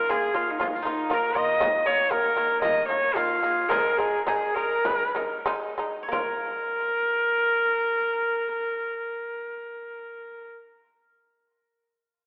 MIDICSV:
0, 0, Header, 1, 5, 480
1, 0, Start_track
1, 0, Tempo, 507614
1, 1543, Time_signature, 4, 2, 24, 8
1, 3000, Tempo, 560224
1, 4440, Tempo, 630915
1, 5400, Tempo, 668151
1, 9817, End_track
2, 0, Start_track
2, 0, Title_t, "Guzheng"
2, 0, Program_c, 0, 107
2, 0, Note_on_c, 0, 61, 70
2, 0, Note_on_c, 0, 63, 75
2, 0, Note_on_c, 0, 65, 75
2, 112, Note_on_c, 0, 68, 73
2, 709, Note_off_c, 0, 65, 0
2, 713, Note_on_c, 0, 65, 54
2, 772, Note_off_c, 0, 63, 0
2, 775, Note_on_c, 0, 63, 74
2, 1070, Note_on_c, 0, 70, 86
2, 1302, Note_on_c, 0, 75, 93
2, 1451, Note_off_c, 0, 61, 0
2, 1529, Note_off_c, 0, 75, 0
2, 1532, Note_on_c, 0, 75, 93
2, 1759, Note_on_c, 0, 73, 88
2, 1992, Note_off_c, 0, 70, 0
2, 1996, Note_on_c, 0, 70, 82
2, 2241, Note_off_c, 0, 73, 0
2, 2245, Note_on_c, 0, 73, 74
2, 2265, Note_off_c, 0, 68, 0
2, 2480, Note_off_c, 0, 75, 0
2, 2483, Note_on_c, 0, 75, 85
2, 2984, Note_off_c, 0, 65, 0
2, 2988, Note_on_c, 0, 65, 73
2, 3229, Note_on_c, 0, 68, 73
2, 3302, Note_off_c, 0, 63, 0
2, 3458, Note_off_c, 0, 70, 0
2, 3461, Note_on_c, 0, 69, 83
2, 3615, Note_off_c, 0, 69, 0
2, 3615, Note_on_c, 0, 70, 83
2, 3942, Note_off_c, 0, 68, 0
2, 3946, Note_on_c, 0, 68, 71
2, 3957, Note_off_c, 0, 73, 0
2, 4061, Note_off_c, 0, 75, 0
2, 4185, Note_off_c, 0, 70, 0
2, 4189, Note_on_c, 0, 70, 68
2, 5070, Note_off_c, 0, 65, 0
2, 5335, Note_on_c, 0, 73, 67
2, 5399, Note_off_c, 0, 70, 0
2, 5402, Note_on_c, 0, 70, 82
2, 5715, Note_off_c, 0, 68, 0
2, 6715, Note_off_c, 0, 73, 0
2, 8545, Note_off_c, 0, 70, 0
2, 9817, End_track
3, 0, Start_track
3, 0, Title_t, "Horsehead fiddle"
3, 0, Program_c, 1, 110
3, 0, Note_on_c, 1, 70, 99
3, 91, Note_on_c, 1, 68, 99
3, 105, Note_off_c, 1, 70, 0
3, 320, Note_on_c, 1, 65, 96
3, 334, Note_off_c, 1, 68, 0
3, 474, Note_on_c, 1, 63, 77
3, 488, Note_off_c, 1, 65, 0
3, 547, Note_on_c, 1, 65, 76
3, 561, Note_off_c, 1, 63, 0
3, 634, Note_on_c, 1, 63, 76
3, 649, Note_off_c, 1, 65, 0
3, 705, Note_on_c, 1, 65, 71
3, 719, Note_off_c, 1, 63, 0
3, 780, Note_on_c, 1, 63, 105
3, 794, Note_off_c, 1, 65, 0
3, 1064, Note_on_c, 1, 70, 107
3, 1078, Note_off_c, 1, 63, 0
3, 1293, Note_on_c, 1, 75, 118
3, 1307, Note_off_c, 1, 70, 0
3, 1762, Note_on_c, 1, 73, 101
3, 1776, Note_off_c, 1, 75, 0
3, 2003, Note_on_c, 1, 70, 98
3, 2017, Note_off_c, 1, 73, 0
3, 2472, Note_off_c, 1, 70, 0
3, 2478, Note_on_c, 1, 75, 101
3, 2713, Note_off_c, 1, 75, 0
3, 2719, Note_on_c, 1, 73, 100
3, 2982, Note_on_c, 1, 65, 102
3, 2996, Note_off_c, 1, 73, 0
3, 3445, Note_on_c, 1, 70, 102
3, 3458, Note_off_c, 1, 65, 0
3, 3685, Note_on_c, 1, 68, 89
3, 3698, Note_off_c, 1, 70, 0
3, 3926, Note_off_c, 1, 68, 0
3, 3931, Note_on_c, 1, 68, 83
3, 4172, Note_on_c, 1, 70, 101
3, 4185, Note_off_c, 1, 68, 0
3, 4900, Note_off_c, 1, 70, 0
3, 5398, Note_on_c, 1, 70, 104
3, 8542, Note_off_c, 1, 70, 0
3, 9817, End_track
4, 0, Start_track
4, 0, Title_t, "Shamisen"
4, 0, Program_c, 2, 106
4, 89, Note_on_c, 2, 58, 93
4, 99, Note_on_c, 2, 65, 102
4, 294, Note_off_c, 2, 58, 0
4, 299, Note_off_c, 2, 65, 0
4, 323, Note_on_c, 2, 58, 78
4, 335, Note_on_c, 2, 65, 81
4, 530, Note_off_c, 2, 58, 0
4, 535, Note_off_c, 2, 65, 0
4, 561, Note_on_c, 2, 58, 86
4, 572, Note_on_c, 2, 65, 102
4, 768, Note_off_c, 2, 58, 0
4, 773, Note_off_c, 2, 65, 0
4, 804, Note_on_c, 2, 58, 69
4, 815, Note_on_c, 2, 65, 81
4, 1007, Note_off_c, 2, 58, 0
4, 1013, Note_off_c, 2, 65, 0
4, 1036, Note_on_c, 2, 58, 96
4, 1046, Note_on_c, 2, 65, 102
4, 1242, Note_off_c, 2, 58, 0
4, 1248, Note_off_c, 2, 65, 0
4, 1278, Note_on_c, 2, 58, 76
4, 1286, Note_on_c, 2, 65, 81
4, 1482, Note_off_c, 2, 58, 0
4, 1486, Note_off_c, 2, 65, 0
4, 1517, Note_on_c, 2, 51, 98
4, 1524, Note_on_c, 2, 58, 108
4, 1721, Note_off_c, 2, 51, 0
4, 1724, Note_off_c, 2, 58, 0
4, 1759, Note_on_c, 2, 51, 72
4, 1771, Note_on_c, 2, 58, 83
4, 1962, Note_off_c, 2, 51, 0
4, 1968, Note_off_c, 2, 58, 0
4, 1997, Note_on_c, 2, 51, 92
4, 2007, Note_on_c, 2, 58, 101
4, 2202, Note_off_c, 2, 51, 0
4, 2206, Note_off_c, 2, 58, 0
4, 2240, Note_on_c, 2, 51, 73
4, 2248, Note_on_c, 2, 58, 84
4, 2445, Note_off_c, 2, 51, 0
4, 2449, Note_off_c, 2, 58, 0
4, 2480, Note_on_c, 2, 51, 83
4, 2490, Note_on_c, 2, 58, 95
4, 2689, Note_off_c, 2, 51, 0
4, 2694, Note_off_c, 2, 58, 0
4, 2734, Note_on_c, 2, 51, 75
4, 2746, Note_on_c, 2, 58, 75
4, 2941, Note_off_c, 2, 51, 0
4, 2948, Note_off_c, 2, 58, 0
4, 2989, Note_on_c, 2, 51, 94
4, 2997, Note_on_c, 2, 58, 102
4, 3178, Note_off_c, 2, 51, 0
4, 3182, Note_off_c, 2, 58, 0
4, 3216, Note_on_c, 2, 51, 68
4, 3223, Note_on_c, 2, 58, 79
4, 3409, Note_off_c, 2, 51, 0
4, 3412, Note_off_c, 2, 58, 0
4, 3450, Note_on_c, 2, 56, 97
4, 3459, Note_on_c, 2, 63, 113
4, 3645, Note_off_c, 2, 56, 0
4, 3650, Note_off_c, 2, 63, 0
4, 3695, Note_on_c, 2, 56, 75
4, 3703, Note_on_c, 2, 63, 82
4, 3890, Note_off_c, 2, 56, 0
4, 3894, Note_off_c, 2, 63, 0
4, 3936, Note_on_c, 2, 56, 84
4, 3947, Note_on_c, 2, 63, 102
4, 4135, Note_off_c, 2, 56, 0
4, 4141, Note_off_c, 2, 63, 0
4, 4186, Note_on_c, 2, 56, 67
4, 4195, Note_on_c, 2, 63, 78
4, 4389, Note_off_c, 2, 56, 0
4, 4393, Note_off_c, 2, 63, 0
4, 4436, Note_on_c, 2, 56, 85
4, 4443, Note_on_c, 2, 63, 90
4, 4622, Note_off_c, 2, 56, 0
4, 4625, Note_off_c, 2, 63, 0
4, 4664, Note_on_c, 2, 56, 68
4, 4673, Note_on_c, 2, 63, 75
4, 4856, Note_off_c, 2, 56, 0
4, 4860, Note_off_c, 2, 63, 0
4, 4899, Note_on_c, 2, 56, 117
4, 4909, Note_on_c, 2, 63, 113
4, 5097, Note_off_c, 2, 56, 0
4, 5102, Note_off_c, 2, 63, 0
4, 5144, Note_on_c, 2, 56, 77
4, 5154, Note_on_c, 2, 63, 91
4, 5347, Note_off_c, 2, 56, 0
4, 5352, Note_off_c, 2, 63, 0
4, 5378, Note_on_c, 2, 58, 80
4, 5411, Note_on_c, 2, 65, 88
4, 8523, Note_off_c, 2, 58, 0
4, 8555, Note_off_c, 2, 65, 0
4, 9817, End_track
5, 0, Start_track
5, 0, Title_t, "Frame drum"
5, 117, Note_on_c, 9, 64, 53
5, 211, Note_off_c, 9, 64, 0
5, 348, Note_on_c, 9, 64, 23
5, 442, Note_off_c, 9, 64, 0
5, 588, Note_on_c, 9, 64, 66
5, 683, Note_off_c, 9, 64, 0
5, 817, Note_on_c, 9, 64, 48
5, 911, Note_off_c, 9, 64, 0
5, 940, Note_on_c, 9, 64, 21
5, 1034, Note_off_c, 9, 64, 0
5, 1063, Note_on_c, 9, 64, 51
5, 1158, Note_off_c, 9, 64, 0
5, 1532, Note_on_c, 9, 64, 74
5, 1626, Note_off_c, 9, 64, 0
5, 1903, Note_on_c, 9, 64, 21
5, 1997, Note_off_c, 9, 64, 0
5, 2023, Note_on_c, 9, 64, 56
5, 2117, Note_off_c, 9, 64, 0
5, 2257, Note_on_c, 9, 64, 26
5, 2352, Note_off_c, 9, 64, 0
5, 2506, Note_on_c, 9, 64, 73
5, 2600, Note_off_c, 9, 64, 0
5, 2756, Note_on_c, 9, 64, 48
5, 2850, Note_off_c, 9, 64, 0
5, 2880, Note_on_c, 9, 64, 24
5, 2975, Note_off_c, 9, 64, 0
5, 3005, Note_on_c, 9, 64, 49
5, 3090, Note_off_c, 9, 64, 0
5, 3462, Note_on_c, 9, 64, 73
5, 3548, Note_off_c, 9, 64, 0
5, 3824, Note_on_c, 9, 64, 22
5, 3910, Note_off_c, 9, 64, 0
5, 3939, Note_on_c, 9, 64, 58
5, 4025, Note_off_c, 9, 64, 0
5, 4186, Note_on_c, 9, 64, 23
5, 4271, Note_off_c, 9, 64, 0
5, 4434, Note_on_c, 9, 64, 69
5, 4511, Note_off_c, 9, 64, 0
5, 4673, Note_on_c, 9, 64, 54
5, 4749, Note_off_c, 9, 64, 0
5, 4793, Note_on_c, 9, 64, 24
5, 4870, Note_off_c, 9, 64, 0
5, 4914, Note_on_c, 9, 64, 56
5, 4990, Note_off_c, 9, 64, 0
5, 5408, Note_on_c, 9, 64, 81
5, 5480, Note_off_c, 9, 64, 0
5, 9817, End_track
0, 0, End_of_file